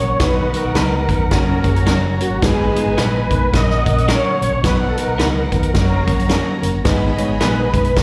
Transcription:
Already playing: F#3 A#3 C#4 A#4 C#5 F#5
0.10 A#1
0.19 B1 D#3 F#3 B3 D#4 F#4 B4 F#5, kick, snare, closed hi-hat
0.23 B4
0.54 F#3 B3 D#4 A#4 B4, closed hi-hat
0.64 B1
0.75 C#2 F#3 B3 D#4 F#4 B4, snare, closed hi-hat
1.09 D#2 F#3 B3 D#4 B4, kick, closed hi-hat
1.20 D#4 B4
1.31 F#1 F#3 A#3 C#4 F4 F#4 A#4 C#5 A#5, kick, snare, closed hi-hat
1.48 C#4 A#4
1.64 F#2 F#3 A#3 C#4 G#4 A#4, kick, closed hi-hat
1.76 A#3 F#4, closed hi-hat
1.86 F#1 F#3 A#3 C#4 F#4 A#4, snare, closed hi-hat
2.21 F#3 A#3 C#4 F#4 A#4, closed hi-hat
2.30 G#1
2.40 G#1 G#3 B3 D#4 G#4 B4 G#5, kick, snare, closed hi-hat
2.76 G#3 B3 D#4 F4, closed hi-hat
2.86 G#1
2.97 A#1 G#3 B3 D#4 G#4 B4, snare, closed hi-hat
3.30 B1 G#3 B3 D#4 A#4, kick, closed hi-hat
3.51 A#1 F#3 A#3 C#4 A#4 F#5, kick, snare, closed hi-hat
3.55 D#5
3.70 snare
3.85 A#2 F#3 A#3 C#4 A#4, kick, closed hi-hat
3.98 closed hi-hat
4.08 F#3 A#3 C#4 F#4 A#4 C#5, snare, closed hi-hat
4.41 A#1 F#3 A#3 C#4 C#5, closed hi-hat
4.52 A#1
4.63 B1 F#3 B3 D#4 B4 F#5, kick, snare, closed hi-hat
4.89 A4
4.96 F#3 B3 D#4 A#4 B4, closed hi-hat
5.07 B1
5.18 C#2 F#3 B3 D#4 F#4 A#4 B4, snare, closed hi-hat
5.52 D#2 F#3 B3 D#4 B4, kick, closed hi-hat
5.63 closed hi-hat
5.74 F#1 F#3 A#3 C#4 F#4 A#4 C#5 A#5, kick, snare, closed hi-hat
6.07 F#2 F#3 A#3 C#4 A#4, kick, closed hi-hat
6.19 closed hi-hat
6.28 F#3 A#3 C#4 F#4 A#4, snare, closed hi-hat
6.62 F#1 F#3 A#3 C#4 A#4, closed hi-hat
6.74 G1
6.84 G#1 G#3 B3 D#4 G#4 B4 D#5 B5, kick, snare, closed hi-hat
7.18 G#3 B3 D#4 C#5, closed hi-hat
7.29 G#1
7.40 A#1 G#3 B3 D#4 G#4 A#4 B4, snare, closed hi-hat
7.46 B4
7.73 B1 G#3 B3 D#4 B4, kick, closed hi-hat
7.85 closed hi-hat
7.95 A#1 F#3 A#3 C#4 F#4 A#4 F5 C#6, kick, snare, closed hi-hat
8.00 D#5

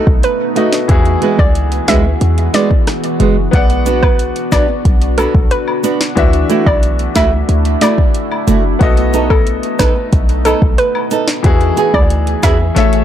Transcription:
Already playing: A3 B3 D#4 F#4 A4 D#5
0.07 B1, kick
0.23 B4, closed hi-hat
0.55 A3 B3 D#4 F#4 A4 D#5, closed hi-hat
0.73 snare
0.88 E2 E3 E4 F#4 G#4, kick, closed hi-hat
1.05 closed hi-hat
1.22 G#3 B3 F#4, closed hi-hat
1.39 C#2 D5, kick
1.55 closed hi-hat
1.72 closed hi-hat
1.88 D2 G#3 B3 F#4 E5, kick, snare, closed hi-hat
2.04 muted nylon-string guitar stroke
2.21 E2, closed hi-hat
2.38 closed hi-hat
2.53 G#3 B3 F#4 D5, snare, closed hi-hat
2.71 kick
2.87 cross-stick, snare, closed hi-hat
3.04 closed hi-hat
3.20 F#1 G#3 B3 F#4, closed hi-hat
3.51 B1 B3 D4 B4 D5 F#5, kick, closed hi-hat
3.70 closed hi-hat
3.85 B3 D4 F#4, closed hi-hat, cabasa
4.03 B4, kick, high woodblock
4.19 closed hi-hat
4.36 closed hi-hat
4.52 A1 B3 D4 F#4 D5, kick, snare, closed hi-hat, cabasa, high woodblock
4.68 muted nylon-string guitar stroke
4.85 B1, kick, closed hi-hat
5.02 closed hi-hat
5.17 B3 D4 F#4 A4, closed hi-hat, cabasa, high woodblock
5.35 B1, kick
5.51 B4, closed hi-hat
5.68 high woodblock
5.83 B3 D4 F#4, closed hi-hat, cabasa
6.01 snare
6.15 D2 E3 A3 D4 E4 F#4 E5, kick, closed hi-hat
6.33 closed hi-hat
6.49 A3 E4 F#4, closed hi-hat, cabasa
6.66 B1 D5, kick, high woodblock
6.83 closed hi-hat
6.99 closed hi-hat
7.15 C#2 A3 E4 F#4 E5, kick, snare, closed hi-hat, cabasa, high woodblock
7.32 muted nylon-string guitar stroke
7.49 D2, closed hi-hat
7.65 closed hi-hat
7.81 A3 E4 F#4 D5, snare, closed hi-hat, cabasa, high woodblock
7.98 kick
8.15 closed hi-hat
8.32 high woodblock
8.47 F#1 A3 E4 F#4, closed hi-hat, cabasa
8.79 B1 B3 D#4 F#4 A4 D#5, kick, closed hi-hat
8.97 closed hi-hat
9.13 B3 D#4 A4, closed hi-hat, cabasa
9.30 A4, kick, high woodblock
9.47 closed hi-hat
9.63 closed hi-hat
9.79 A1 B3 D#4 A4 B4, kick, snare, closed hi-hat, cabasa, high woodblock
9.96 muted nylon-string guitar stroke
10.13 B1, kick, closed hi-hat
10.29 closed hi-hat
10.45 B3 D#4 A4, closed hi-hat, cabasa, high woodblock
10.62 B1, kick
10.78 B4, closed hi-hat
10.95 high woodblock
11.11 B3 D#4 A4, closed hi-hat, cabasa
11.28 snare
11.43 E2 E3 E4 F#4 G#4, kick, closed hi-hat
11.61 closed hi-hat
11.77 B3 F#4 G#4, closed hi-hat, cabasa
11.94 D2 D5, kick, high woodblock
12.10 closed hi-hat
12.27 closed hi-hat
12.43 E2 B3 F#4 G#4 E5, kick, snare, closed hi-hat, cabasa, high woodblock
12.59 muted nylon-string guitar stroke
12.75 A1 A3 A4 C#5 E5, snare, closed hi-hat
12.93 closed hi-hat

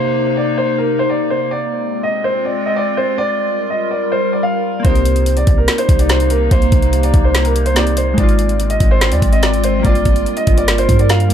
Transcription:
Already playing: C3 A#3 D#4 C5
0.37 D5
0.58 C5
0.78 A#4
0.99 C5
1.09 D5
1.30 C5
1.51 G#3 C4 F4 D5
2.03 D#5
2.24 C5
2.45 D5
2.66 D#5
2.76 D5
2.97 C5
3.18 G3 A#4 D5
3.70 D#5
3.91 D5
4.12 C5
4.33 D5
4.43 F5
4.80 A#3 C4
4.85 C2 C3 A#3 D#4 C5, kick, closed hi-hat
4.89 G4
4.95 closed hi-hat
5.05 closed hi-hat
5.16 closed hi-hat
5.26 closed hi-hat
5.37 D5, closed hi-hat
5.47 C2, kick, closed hi-hat
5.58 A#4
5.68 snare, closed hi-hat
5.78 C5, closed hi-hat
5.89 C2, kick, closed hi-hat
5.99 D5, closed hi-hat
6.09 C5, snare, closed hi-hat
6.20 closed hi-hat
6.30 A#4, closed hi-hat
6.51 C2 C5, kick, closed hi-hat
6.62 closed hi-hat
6.72 C2, kick, closed hi-hat
6.82 closed hi-hat
6.93 closed hi-hat
7.03 D5, closed hi-hat
7.14 C2, kick, closed hi-hat
7.24 C5
7.35 snare, closed hi-hat
7.45 A#4, closed hi-hat
7.56 closed hi-hat
7.66 C5, closed hi-hat
7.75 A#3 C4 D#4 D5, snare, closed hi-hat
7.79 G4
7.87 closed hi-hat
7.97 C5, closed hi-hat
8.14 G#3 C4
8.18 G#1 G#3 C4 D#4 F4 D5, kick, closed hi-hat
8.23 F4
8.29 closed hi-hat
8.39 closed hi-hat
8.49 closed hi-hat
8.60 closed hi-hat
8.70 D#5, closed hi-hat
8.80 G#1, kick, closed hi-hat
8.91 C5
9.01 snare, closed hi-hat
9.12 D#2 D5, closed hi-hat
9.22 G#1, kick, closed hi-hat
9.33 D#5, closed hi-hat
9.43 D5, snare, closed hi-hat
9.54 closed hi-hat
9.64 C5, closed hi-hat
9.79 G3 A#3
9.85 G1 G3 D4 A#4 D5, kick, closed hi-hat
9.89 F4
9.95 closed hi-hat
10.05 G1, kick, closed hi-hat
10.16 closed hi-hat
10.26 closed hi-hat
10.37 D#5, closed hi-hat
10.47 G1, kick, closed hi-hat, open hi-hat
10.58 D5, closed hi-hat
10.68 snare, closed hi-hat
10.78 C5, closed hi-hat
10.89 G2, kick, closed hi-hat
10.99 D5, closed hi-hat
11.09 F5, snare, closed hi-hat
11.20 closed hi-hat
11.28 D2 G3 A#3, closed hi-hat

